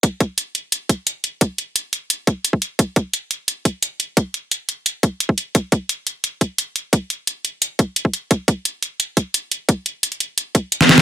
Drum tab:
HH |x-x-x-x-x-x-x-x-|x-x-x-x-x-x-x-x-|x-x-x-x-x-x-x-x-|x-x-x-x-x-x-x-x-|
SD |----------------|----------------|----------------|----------------|
BD |o-o-------o-----|o---------o--o--|o-o-------o-----|o---------o--o--|

HH |x-x-x-x-x-x-x-x-|x-x-x-x-x-x-x-x-|x-x-x-x-x-x-x-x-|x-x-xxx-x-x-xxxx|
SD |----------------|----------------|----------------|-------------ooo|
BD |o-o-------o-----|o---------o--o--|o-o-------o-----|o---------o--o--|